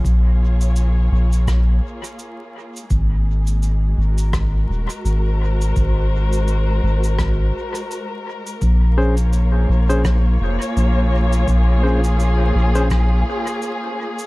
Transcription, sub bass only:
X:1
M:4/4
L:1/8
Q:"Swing 16ths" 1/4=84
K:Bbm
V:1 name="Sub bass" clef=bass
B,,,3 B,,,2 z3 | A,,,3 A,,,2 E,,, A,,,2 | A,,,3 A,,,2 z3 | B,,,3 B,,,2 F,,, B,,,2 |
B,,,3 B,,,2 z3 |]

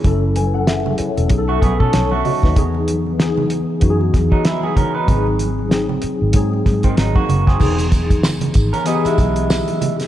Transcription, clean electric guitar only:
X:1
M:4/4
L:1/16
Q:"Swing 16ths" 1/4=95
K:E
V:1 name="Clean electric guitar"
z8 z [A,F] [B,G] [CA]2 [A,F]3 | z8 z3 [F,D] [G,E] [B,G] [C^A] [DB]- | [DB] z8 z2 [D,^B,] [F,D] [^A,F]2 [B,G]- | [^B,G] z6 [C^A] [=B,G] [G,E]6 z |]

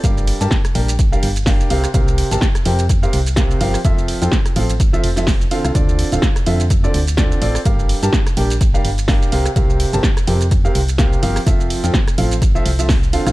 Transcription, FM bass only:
X:1
M:4/4
L:1/16
Q:"Swing 16ths" 1/4=126
K:F
V:1 name="FM bass" clef=bass
G,,,2 z G,, z2 B,,,3 z G,,,3 z C,, z | C,,2 z G,,, z2 F,,3 z C,,3 z G,,, z | F,,,2 z F,, z2 A,,,3 z F,,,3 z2 C,, | D,,2 z D,,, z2 F,,3 z D,,3 z A,,, z |
G,,,2 z G,, z2 B,,,3 z G,,,3 z C,, z | C,,2 z G,,, z2 F,,3 z C,,3 z G,,, z | F,,,2 z F,, z2 A,,,3 z C,,4 z A,,, |]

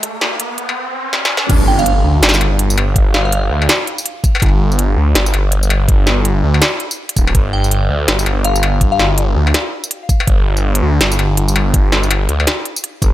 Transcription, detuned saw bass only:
X:1
M:4/4
L:1/8
Q:"Swing 16ths" 1/4=164
K:Cm
V:1 name="Detuned saw bass" clef=bass
z8 | G,,,3 D,, G,,, G,,,3- | G,,,3 D,, z4 | G,,,3 D,, G,,, G,,,3- |
G,,,3 D,, z3 D,,, | G,,,3 D,, G,,, G,,,3- | G,,,3 D,, z4 | G,,,3 D,, G,,, G,,,3- |
G,,,3 D,, z3 G,,, |]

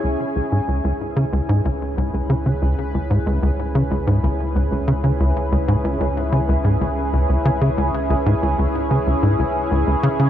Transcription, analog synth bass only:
X:1
M:4/4
L:1/16
Q:1/4=93
K:C#m
V:1 name="Analog synth bass" clef=bass
C,, z C,, G,, C,, C,, z C, C,, G,, C,, z C,, C,, C, C, | C,, z C,, G,, C,, C,, z C, C,, G,, C,, z C,, C,, C, C, | C,, z C,, G,, C,, C,, z C, C,, G,, C,, z C,, C,, C, C, | C,, z C,, G,, C,, C,, z C, C,, G,, C,, z C,, C,, C, C, |]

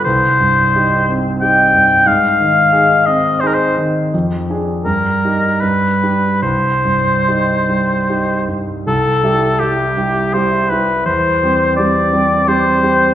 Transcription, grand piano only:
X:1
M:3/4
L:1/8
Q:1/4=83
K:Cm
V:1 name="Grand piano"
C,, G,, [EG] C [EG] G,, | A,, E, [EA] C [EA] E, | F,, [DA] G,, [EG] G,, [DG] | C,, G,, [EG] G, [EG] G,, |
[K:C] C,, [G,EG] [G,EG] [G,EG] [G,EG] [G,EG] | E,, [G,CG] [G,CG] [G,CG] [G,CG] [G,CG] |]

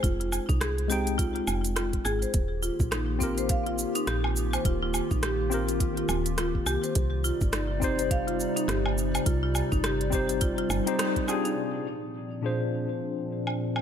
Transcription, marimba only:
X:1
M:4/4
L:1/16
Q:"Swing 16ths" 1/4=104
K:Cm
V:1 name="Marimba"
F F z E A2 G2 F F3 F z A c | z2 F z E2 C c f F z E G3 c | F F z E G2 G2 F F3 F z G c | z2 F z E2 C c f F z E G3 c |
F F z E G2 G2 F F z2 E z G E | z16 |]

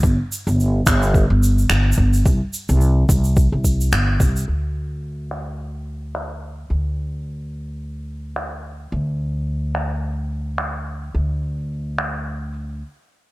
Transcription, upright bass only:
X:1
M:4/4
L:1/16
Q:"Swing 16ths" 1/4=108
K:Clyd
V:1 name="Upright bass" clef=bass
G,,, z2 G,,,3 G,,,3 G,,,3 G,,,2 G,,,2 | C,, z2 C,,3 C,,3 C,,3 G,,,2 C,,2 | D,,16 | D,,16 |
D,,16 | D,,12 z4 |]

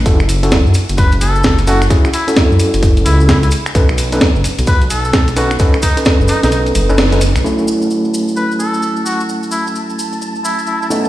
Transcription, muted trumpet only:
X:1
M:4/4
L:1/16
Q:"Swing 16ths" 1/4=130
K:F#dor
V:1 name="Muted trumpet"
z8 B z A3 z F z | z2 E z6 z E z E E z2 | z8 B z A3 z F z | z2 D z3 D D D z6 z |
z8 B z A3 z F z | z2 E z6 z E z E E z2 |]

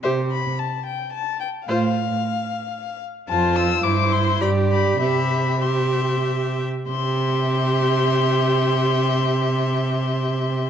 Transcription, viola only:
X:1
M:3/4
L:1/8
Q:1/4=99
K:C
V:1 name="Viola"
G z4 z | F z4 z | F2 E2 G2 | G2 G3 z |
G6- | G6 |]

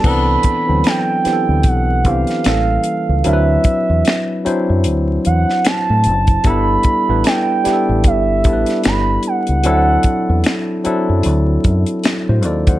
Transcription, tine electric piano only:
X:1
M:4/4
L:1/16
Q:"Swing 16ths" 1/4=75
K:Dmix
V:1 name="Tine electric piano"
[E,B,CDA]3 [E,F,B,CD]3 [E,B,CDGA]3 z [E,B,CDG]2 [E,G,_B,C^CA]3 z | [F,CDE_B=B]4- [F,CDE_B=B] z [F,CDEc]6- [F,CDEc] z3 | [G,B,DEA]3 [G,B,DEB]3 [G,B,DEGA]3 z [G,B,DEAB]4- [G,B,DEAB] z | [F,CDEA]4- [F,CDEA] z [F,CDEA]6- [F,CDEA] [Fc] [Ad] [cf] |]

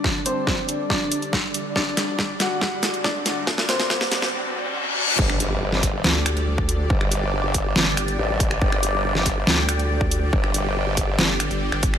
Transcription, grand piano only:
X:1
M:4/4
L:1/8
Q:1/4=140
K:Cdor
V:1 name="Grand piano"
[Dd] [Cc]3 [Dd] z3 | [Dd]3 [^F^f]3 [Dd]2- | [Dd] [Cc]3 z4 | z8 |
z8 | z8 | z8 |]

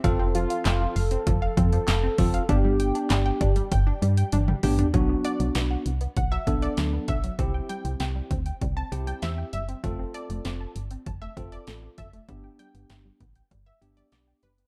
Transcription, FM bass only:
X:1
M:4/4
L:1/16
Q:1/4=98
K:G
V:1 name="FM bass" clef=bass
=F,,,4 F,,,2 F,,,2 F,,,2 =F,,2 F,,,2 F,,,2 | G,,,4 G,,,2 G,,,2 G,,,2 G,,2 G,,,2 A,,,2 | B,,,2 z B,,, B,,,2 C,,2 B,,,2 B,,,2 D,,2 B,,,2 | C,,2 z C,, C,,2 D,,2 C,,2 C,,2 E,,2 F,,,2 |
=F,,,2 z F,,, F,,,2 G,,,2 F,,,2 F,,,2 A,,,2 F,,,2 | G,,,2 z G,,, G,,,2 A,,,2 G,,,2 G,,,2 B,,,2 F,,,2 |]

